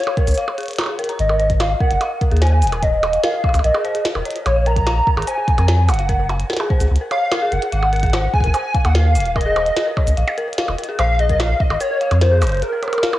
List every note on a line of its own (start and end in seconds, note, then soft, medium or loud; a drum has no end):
0.00 0.78 C#5 loud
0.00 closed hi-hat soft
0.04 0.15 F5 medium
0.04 closed hi-hat soft
0.04 percussion blips medium
0.17 0.22 A#4 loud
0.17 kick loud
0.17 closed hi-hat soft
0.27 0.34 C#2 loud
0.27 0.32 A#4 medium
0.27 closed hi-hat medium
0.27 cabasa medium
0.31 cabasa medium
0.34 0.46 F5 loud
0.34 closed hi-hat medium
0.34 cabasa medium
0.48 percussion blips medium
0.58 0.66 G#4 medium
0.58 closed hi-hat soft
0.61 closed hi-hat soft
0.63 closed hi-hat soft
0.66 closed hi-hat soft
0.68 closed hi-hat medium
0.71 closed hi-hat soft
0.73 closed hi-hat soft
0.76 snare loud
0.76 closed hi-hat soft
0.78 0.83 A#5 medium
0.78 closed hi-hat medium
0.78 percussion blips medium
0.81 percussion blips medium
0.84 percussion blips medium
0.86 0.97 G#4 medium
0.86 percussion blips soft
0.99 1.07 A#4 loud
0.99 closed hi-hat medium
1.04 closed hi-hat medium
1.09 1.19 A#5 medium
1.09 closed hi-hat medium
1.19 1.74 G#1 loud
1.19 1.57 D#5 medium
1.19 closed hi-hat medium
1.29 1.37 A#4 medium
1.29 percussion blips medium
1.40 1.44 C5 medium
1.40 closed hi-hat soft
1.50 kick medium
1.50 closed hi-hat medium
1.60 1.79 F5 medium
1.60 1.65 F5 medium
1.60 snare loud
1.60 percussion blips medium
1.70 1.78 F5 medium
1.81 1.85 A#4 loud
1.81 2.19 F#5 loud
1.81 kick loud
1.91 1.97 F#1 loud
1.91 1.95 A#4 medium
1.91 closed hi-hat medium
2.01 2.09 F5 loud
2.01 closed hi-hat medium
2.01 percussion blips medium
2.21 2.29 A#4 medium
2.21 kick loud
2.21 closed hi-hat soft
2.31 2.64 D#2 medium
2.31 2.39 G#4 loud
2.31 closed hi-hat soft
2.37 closed hi-hat soft
2.42 2.51 C5 loud
2.42 2.84 G#5 loud
2.42 snare loud
2.42 closed hi-hat medium
2.47 closed hi-hat soft
2.52 2.57 G#4 medium
2.62 3.17 D#1 medium
2.62 closed hi-hat medium
2.62 cabasa medium
2.67 closed hi-hat medium
2.72 2.80 A#4 medium
2.72 closed hi-hat medium
2.72 percussion blips medium
2.83 2.87 C#5 medium
2.83 3.23 D#5 loud
2.83 kick medium
2.83 closed hi-hat medium
3.03 3.08 F5 medium
3.03 closed hi-hat soft
3.03 percussion blips medium
3.13 3.21 F5 medium
3.13 closed hi-hat medium
3.23 3.28 A#4 loud
3.23 3.61 F5 loud
3.23 snare loud
3.34 3.38 A#4 medium
3.44 3.52 F5 loud
3.44 kick loud
3.44 percussion blips soft
3.49 percussion blips soft
3.54 3.60 C#2 loud
3.54 closed hi-hat medium
3.54 cabasa medium
3.54 percussion blips soft
3.59 percussion blips soft
3.64 3.71 A#1 loud
3.64 3.72 A#4 medium
3.64 4.02 D#5 medium
3.64 closed hi-hat medium
3.74 3.82 G#4 loud
3.74 percussion blips medium
3.85 3.94 C5 loud
3.85 closed hi-hat soft
3.95 4.00 G#4 medium
3.95 closed hi-hat medium
4.05 snare loud
4.05 closed hi-hat medium
4.15 4.22 D#1 loud
4.15 4.23 A#4 medium
4.15 percussion blips medium
4.25 4.30 C#5 medium
4.25 closed hi-hat medium
4.31 closed hi-hat medium
4.36 closed hi-hat medium
4.46 5.01 A#1 loud
4.46 4.68 C#5 loud
4.46 4.51 F5 medium
4.46 closed hi-hat medium
4.46 percussion blips medium
4.56 4.64 F5 medium
4.66 4.71 A#4 loud
4.66 5.27 A#5 loud
4.66 closed hi-hat soft
4.76 4.81 A#4 medium
4.76 kick medium
4.76 closed hi-hat medium
4.87 4.94 F5 loud
4.87 snare loud
4.87 percussion blips medium
5.07 5.15 A#4 medium
5.07 kick loud
5.17 5.24 G#1 loud
5.17 5.25 G#4 loud
5.17 percussion blips medium
5.22 closed hi-hat medium
5.27 5.37 C5 loud
5.27 5.90 G#5 loud
5.27 closed hi-hat medium
5.27 cabasa medium
5.38 5.42 G#4 medium
5.48 kick loud
5.48 closed hi-hat soft
5.58 5.90 F2 medium
5.58 5.66 A#4 medium
5.58 closed hi-hat medium
5.58 percussion blips medium
5.68 5.73 C#5 medium
5.68 snare loud
5.68 closed hi-hat medium
5.89 6.44 F#1 medium
5.89 5.93 F5 medium
5.89 6.30 F#5 medium
5.89 closed hi-hat soft
5.89 cabasa medium
5.89 percussion blips medium
5.94 closed hi-hat medium
5.99 6.07 F5 medium
5.99 closed hi-hat medium
6.09 6.14 A#4 loud
6.09 kick medium
6.09 closed hi-hat medium
6.19 6.24 A#4 medium
6.29 6.37 F5 loud
6.29 closed hi-hat soft
6.29 percussion blips medium
6.40 closed hi-hat medium
6.50 6.58 A#4 medium
6.50 snare medium
6.53 snare medium
6.57 6.68 G#4 loud
6.57 snare loud
6.57 percussion blips medium
6.70 6.80 C5 loud
6.70 kick loud
6.80 6.87 C#2 loud
6.80 6.85 G#4 medium
6.80 closed hi-hat medium
6.80 cabasa medium
6.91 6.97 C#2 loud
6.96 closed hi-hat medium
7.01 7.09 A#4 medium
7.11 7.16 C#5 medium
7.11 7.53 F5 loud
7.11 closed hi-hat soft
7.11 percussion blips soft
7.32 7.39 A#4 loud
7.32 snare loud
7.32 closed hi-hat medium
7.32 percussion blips medium
7.42 7.51 G#4 loud
7.52 7.58 F#1 loud
7.52 7.57 A#4 medium
7.52 8.33 F#5 loud
7.52 closed hi-hat soft
7.62 7.70 G#4 medium
7.62 closed hi-hat medium
7.72 8.27 G#1 loud
7.72 7.80 F5 loud
7.72 closed hi-hat medium
7.83 percussion blips medium
7.93 8.01 A#4 medium
7.93 closed hi-hat soft
7.96 closed hi-hat soft
8.00 8.11 G#4 loud
8.00 kick medium
8.00 closed hi-hat soft
8.03 closed hi-hat soft
8.06 closed hi-hat soft
8.10 8.23 C5 loud
8.10 snare loud
8.10 closed hi-hat soft
8.10 percussion blips medium
8.34 8.38 G#4 medium
8.34 8.53 G#5 loud
8.34 kick loud
8.40 8.50 F#1 loud
8.40 8.52 A#4 medium
8.40 kick medium
8.40 closed hi-hat soft
8.47 kick medium
8.54 8.59 C5 medium
8.54 8.86 G#5 loud
8.54 closed hi-hat medium
8.54 cabasa medium
8.54 percussion blips medium
8.74 8.79 F5 medium
8.74 kick loud
8.74 closed hi-hat soft
8.85 9.17 D#2 medium
8.85 8.92 F5 medium
8.85 8.96 F#5 loud
8.85 closed hi-hat medium
8.85 percussion blips medium
8.95 8.99 A#4 loud
8.95 9.35 F5 loud
8.95 snare loud
8.95 closed hi-hat medium
9.05 9.10 A#4 medium
9.15 9.70 D#1 medium
9.15 9.23 F5 loud
9.15 closed hi-hat soft
9.15 cabasa medium
9.20 closed hi-hat medium
9.25 closed hi-hat soft
9.36 9.43 A#4 medium
9.36 10.13 D#5 medium
9.36 kick medium
9.36 percussion blips soft
9.41 closed hi-hat medium
9.46 9.54 G#4 loud
9.56 9.66 C5 loud
9.56 closed hi-hat soft
9.56 percussion blips medium
9.66 closed hi-hat soft
9.76 9.81 G#4 medium
9.76 snare loud
9.87 9.94 A#4 medium
9.97 10.02 C#5 medium
9.97 kick loud
9.97 percussion blips medium
10.07 10.13 C#2 loud
10.07 closed hi-hat medium
10.07 cabasa medium
10.17 10.24 A#1 loud
10.17 10.22 F5 medium
10.17 closed hi-hat medium
10.27 10.35 F5 medium
10.27 percussion blips medium
10.38 10.42 A#4 loud
10.38 closed hi-hat soft
10.48 10.53 A#4 medium
10.53 closed hi-hat medium
10.58 10.66 F5 loud
10.58 snare loud
10.58 closed hi-hat medium
10.68 10.75 D#1 loud
10.68 percussion blips medium
10.79 10.86 A#4 medium
10.79 closed hi-hat soft
10.84 closed hi-hat medium
10.89 10.97 G#4 loud
10.99 11.54 A#1 loud
10.99 11.09 C5 loud
10.99 11.21 F5 loud
10.99 closed hi-hat medium
10.99 percussion blips medium
11.19 11.24 G#4 medium
11.19 11.41 D#5 loud
11.19 closed hi-hat soft
11.29 11.37 A#4 medium
11.29 kick medium
11.29 closed hi-hat medium
11.40 11.44 C#5 medium
11.40 11.62 F5 loud
11.40 snare loud
11.40 percussion blips medium
11.60 11.80 D#5 loud
11.60 11.65 F5 medium
11.60 kick loud
11.70 11.77 G#1 loud
11.70 11.78 F5 medium
11.70 percussion blips medium
11.81 11.85 A#4 loud
11.81 12.19 C#5 loud
11.81 closed hi-hat medium
11.81 cabasa medium
11.91 11.95 A#4 medium
12.01 12.09 F5 loud
12.01 closed hi-hat soft
12.11 12.43 F2 medium
12.11 closed hi-hat medium
12.11 percussion blips medium
12.21 12.29 A#4 medium
12.21 12.64 C5 loud
12.21 snare loud
12.21 closed hi-hat medium
12.32 12.39 G#4 loud
12.42 12.62 F#1 medium
12.42 12.51 C5 loud
12.42 closed hi-hat soft
12.42 cabasa medium
12.42 percussion blips medium
12.44 closed hi-hat soft
12.47 closed hi-hat medium
12.52 closed hi-hat soft
12.55 closed hi-hat soft
12.57 closed hi-hat soft
12.60 closed hi-hat soft
12.62 12.67 G#4 medium
12.62 13.19 A#4 medium
12.62 closed hi-hat medium
12.72 12.80 A#4 medium
12.83 12.87 C#5 medium
12.83 closed hi-hat soft
12.83 percussion blips soft
12.88 percussion blips soft
12.93 closed hi-hat medium
12.93 percussion blips soft
12.98 percussion blips soft
13.03 13.08 F5 medium
13.03 snare loud
13.13 13.19 F5 medium
13.13 percussion blips medium